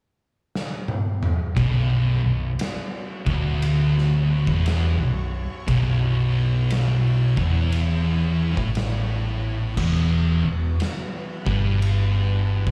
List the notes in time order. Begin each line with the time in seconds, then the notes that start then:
0.55 snare
0.88 high tom
1.23 mid tom
1.56 B0 B1 B3 F#4 C#5, kick, ride bell
2.23 B0 B1
2.59 snare, ride bell
3.26 D1 D2, kick
3.62 ride bell
3.98 snare
4.47 E1 E2, kick
4.66 snare, ride bell
4.98 B0 B1
5.67 B0 B1 E4, kick, ride bell
6.70 snare, ride bell
7.36 E1 E2, kick
7.72 ride bell
8.56 A1 A2, kick
8.75 snare, ride bell
9.77 E1 E2 E3 F#4, kick, crash
10.44 E1 E2
10.80 snare, ride bell
11.46 G1 G2, kick
11.82 ride bell
12.66 A1 A2, kick